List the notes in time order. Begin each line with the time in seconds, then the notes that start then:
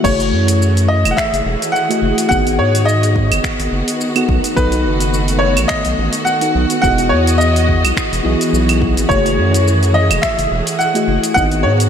0.03 F#1 E3 A3 E4 F#4 G#4 C#5, kick, crash, shaker
0.20 open hi-hat, shaker
0.32 F#2
0.48 open hi-hat, shaker
0.62 shaker
0.77 open hi-hat, shaker
0.88 D#5
1.05 E1, open hi-hat, claves, shaker
1.11 F#5
1.17 E5, finger snap, kick, shaker
1.33 F#1, open hi-hat, shaker
1.45 E1
1.62 open hi-hat, shaker
1.72 F#5, shaker
1.89 A3 E4 F#4 G#4 D#5, open hi-hat, shaker
2.02 F#1
2.18 open hi-hat, shaker
2.29 G#1 D#3 B3 D#4 F#4 G#4 D#5 F#5, kick, shaker
2.47 open hi-hat, shaker
2.59 G#2 C#5
2.75 open hi-hat, shaker
2.85 D#5, shaker
3.03 open hi-hat, shaker
3.16 kick
3.31 F#1, open hi-hat, claves, shaker
3.44 finger snap, kick, shaker
3.59 G#1, open hi-hat, shaker
3.72 F#1
3.88 open hi-hat, shaker
4.01 shaker
4.15 B3 D#4 F#4 A4 F#5, open hi-hat, claves, shaker
4.29 B1 A3, kick
4.44 open hi-hat, shaker
4.56 B1 B3 D#4 F#4 A4 B4 D#5, kick, shaker
4.72 open hi-hat, shaker
4.85 F#1
5.00 open hi-hat, shaker
5.14 shaker
5.28 open hi-hat, shaker
5.39 C#5
5.56 A1, open hi-hat, claves, shaker
5.68 D#5, finger snap, kick, shaker
5.85 B1, open hi-hat, shaker
5.98 A1
6.13 open hi-hat, shaker
6.25 F#5, shaker
6.41 B3 D#4 F#4 A4 F#5, open hi-hat, shaker
6.55 B1
6.70 open hi-hat, shaker
6.82 E1 E3 B3 E4 F#4 G#4 D#5 F#5, kick, shaker
6.98 open hi-hat, shaker
7.09 E2 C#5
7.27 open hi-hat, shaker
7.38 D#5, shaker
7.56 open hi-hat, shaker
7.69 kick
7.84 B1, open hi-hat, claves, shaker
7.97 finger snap, kick, shaker
8.12 E1, open hi-hat, shaker
8.23 B1 B3 E4 F#4 G#4 D#5
8.41 open hi-hat, shaker
8.53 B1, shaker
8.69 open hi-hat, claves, shaker
8.82 kick
8.97 G#1, open hi-hat, shaker
9.08 F#1 A3 E4 F#4 G#4 C#5, kick, shaker
9.26 open hi-hat, shaker
9.38 F#2
9.54 open hi-hat, shaker
9.68 shaker
9.83 open hi-hat, shaker
9.94 D#5
10.10 E1, open hi-hat, claves, shaker
10.22 E5, finger snap, kick, shaker
10.38 F#1, open hi-hat, shaker
10.51 E1
10.67 open hi-hat, shaker
10.79 F#5, shaker
10.94 A3 E4 F#4 G#4 D#5, open hi-hat, shaker
11.08 F#1
11.24 open hi-hat, shaker
11.34 G#1 D#3 B3 D#4 F#4 G#4 D#5 F#5, kick, shaker
11.52 open hi-hat, shaker
11.63 G#2 C#5
11.80 open hi-hat, shaker